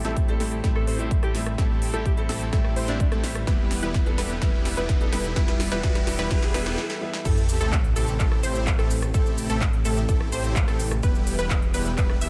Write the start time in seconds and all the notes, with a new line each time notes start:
Already playing: G4 C5 A5, riser
0.04 A1 A2 G3 A3 C4 E4 G4 A4, snare, closed hi-hat
0.17 kick, closed hi-hat
0.28 A2 G3 A3 C4 A4, closed hi-hat
0.40 A1 A3 C4 E4 G4 A4, snare, open hi-hat
0.52 closed hi-hat
0.63 A1 A2 G3 A3 C4 E4 G4 A4, kick, snare, closed hi-hat
0.76 A4, cross-stick
0.87 A1 A3 C4 E4 G4 A4 C5, open hi-hat
0.98 A2 G3 A3 C4 E4 A4, closed hi-hat
1.11 kick, closed hi-hat
1.23 A1 A3 C4 E4 G4 A4, cross-stick, closed hi-hat
1.34 A2 G3 A3 C4 E4, snare, open hi-hat
1.46 cross-stick, closed hi-hat
1.58 A1 A2 G3 A3 C4 E4 G4 A4, kick, snare, closed hi-hat
1.82 open hi-hat
1.93 A1 A2 G3 A3 C4 E4 G4 A4, closed hi-hat
2.06 G4, kick, closed hi-hat
2.17 A2 G3 A3 C4 A4, closed hi-hat
2.29 A1 A3 C4 E4 G4 A4, snare, open hi-hat
2.41 closed hi-hat
2.52 A1 A2 G3 A3 C4 E4 G4 A4, kick, snare, closed hi-hat
2.65 cross-stick
2.76 A1 A3 C4 E4 G4 C5, open hi-hat
2.88 A2 G3 A3 C4 D4 E4, snare, closed hi-hat
3.00 D4, kick, closed hi-hat
3.12 A1 A3 C4 E4 G4 A4, cross-stick, closed hi-hat
3.23 G3 A3 C4 E4, snare, open hi-hat
3.35 cross-stick, closed hi-hat
3.47 E1 E3 G3 B3 E4 G4 B4 E5 B5, kick, snare, closed hi-hat
3.71 snare, open hi-hat
3.82 E1 E3 G3 B3 E4 G4 B4, closed hi-hat
3.94 kick, snare, closed hi-hat
4.06 E3 G3 B3 A4, closed hi-hat
4.18 E1 G3 B3 E4 G4 B4, snare, open hi-hat
4.30 closed hi-hat
4.41 E1 E3 G3 B3 E4 G4 B4, kick, snare, closed hi-hat
4.65 snare, open hi-hat
4.76 E1 E3 G3 B3 E4 G4 B4, closed hi-hat
4.89 kick, snare, closed hi-hat
5.00 E3 G3 B3 A4, closed hi-hat
5.13 E1 G3 B3 E4 G4 B4, snare, open hi-hat
5.24 closed hi-hat
5.36 E1 E3 G3 B3 E4 G4 B4, kick, snare, closed hi-hat
5.48 snare
5.60 snare, open hi-hat
5.71 E1 E3 G3 B3 E4 G4 B4, snare, closed hi-hat
5.83 E1 E3 G3 B3 E4 G4 B4, kick, snare, closed hi-hat
5.95 snare, closed hi-hat
6.07 snare, open hi-hat
6.18 E1 E3 G3 B3 E4 G4 B4, snare
6.30 E1 E3 G3 B3 E4 G4 B4, kick, snare, closed hi-hat
6.43 snare
6.54 E1 E3 G3 B3 E4 G4 B4, snare, open hi-hat
6.66 snare, closed hi-hat
6.77 E3 G3 B3 E4, snare
6.90 snare
7.01 E3 G3 B3 E4
7.13 snare
7.25 A1 C3 A3 C4 E4 G4 A4, kick, closed hi-hat, crash, sub drop, shaker
7.37 shaker
7.49 open hi-hat, shaker
7.61 A1 A3 C4 E4 G4 A4, closed hi-hat, shaker
7.73 kick, clap, closed hi-hat, shaker
7.84 closed hi-hat
7.96 A1 A3 C4 E4 G4 A4, open hi-hat, shaker
8.08 closed hi-hat, shaker
8.20 A1 A3 C4 E4 G4 A4, kick, clap, closed hi-hat, shaker
8.32 cross-stick
8.43 A1 A3 C4 E4 G4 C5, open hi-hat, shaker
8.55 closed hi-hat, shaker
8.67 kick, clap, closed hi-hat, shaker
8.79 A1 A3 C4 E4 G4 A4, cross-stick, closed hi-hat
8.91 open hi-hat, shaker
9.02 cross-stick, closed hi-hat, shaker
9.14 A1 A3 C4 E4 G4 A4, kick, closed hi-hat, shaker
9.26 shaker
9.38 open hi-hat, shaker
9.50 A1 A3 C4 E4 G4 A4, closed hi-hat, shaker
9.61 kick, clap, closed hi-hat, shaker
9.73 closed hi-hat
9.85 A1 A3 C4 E4 G4 A4, open hi-hat, shaker
9.97 closed hi-hat, shaker
10.09 A1 A3 C4 E4 G4 A4, kick, closed hi-hat, shaker
10.21 cross-stick
10.32 A1 A3 C4 E4 G4 C5, open hi-hat, shaker
10.44 closed hi-hat, shaker
10.56 kick, clap, closed hi-hat, shaker
10.68 A1 A3 C4 E4 G4 A4, cross-stick, closed hi-hat
10.80 open hi-hat, shaker
10.91 cross-stick, closed hi-hat, shaker
11.03 E1 E3 G3 B3 E4 G4 B4, kick, closed hi-hat, shaker
11.15 shaker
11.27 open hi-hat, shaker
11.39 E1 G3 B3 E4 G4 B4, closed hi-hat, shaker
11.50 kick, clap, closed hi-hat, shaker
11.62 closed hi-hat
11.74 E1 G3 B3 E4 G4 B4, open hi-hat, shaker
11.86 closed hi-hat, shaker
11.98 E1 G3 B3 E4 G4 B4, kick, clap, closed hi-hat, shaker
12.10 cross-stick
12.21 E1 G3 B3 E4 G4 E5, open hi-hat, shaker